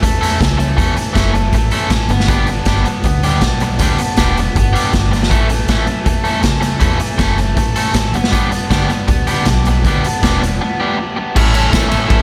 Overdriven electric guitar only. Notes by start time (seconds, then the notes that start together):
Already playing: E3
0.02 A3
0.20 A4
0.39 C#4
0.59 A3
0.78 E3
0.98 A3
1.16 A3
1.34 E3
1.55 A3
1.73 A4
1.91 C#4
2.11 B3
2.29 B3
2.47 D4
2.67 B3
2.86 B3
3.04 B3
3.24 G4
3.43 D4
3.61 B3
3.79 B3
4.02 D4
4.19 B3
4.39 B3
4.58 B3
4.76 G4
4.97 D4
5.15 B3
5.33 E3
5.52 A3
5.71 A3
5.89 E3
6.08 A3
6.28 A4
6.45 C#4
6.64 A3
6.82 E3
7.02 A3
7.19 A3
7.38 E3
7.56 A3
7.76 A4
7.94 C#4
8.13 B3
8.32 B3
8.51 D4
8.70 B3
8.89 B3
9.08 B3
9.27 G4
9.46 D4
9.66 B3
9.85 B3
10.04 D4
10.24 B3
10.42 B3
10.60 B3
10.80 G4
10.98 D4
11.17 B3
11.36 E3 A3 C#4 A4
11.54 E3 A3 C#4 A4
11.73 E3 A3 C#4 A4
11.91 E3 A3 C#4 A4
12.10 E3 A3 C#4 A4